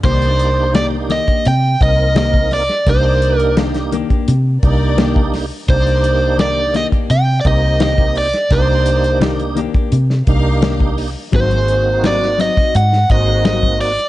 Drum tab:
HH |xxx-x-xxx-x-x-ox|x-xxxxxxx-x-x-o-|xxx-x-xxx-x-x-ox|x-xxxxxxx-x-x-o-|
SD |----o-o-----o-oo|----oo------o-o-|----o-o-----o--o|----o----o--o---|
BD |o------o--o--o--|o------o--o--o--|o------o--o--o--|o------o--o--o--|

HH |xxx-x-xxx-x-x-ox|
SD |----ooo--o--o---|
BD |o------o--o--o--|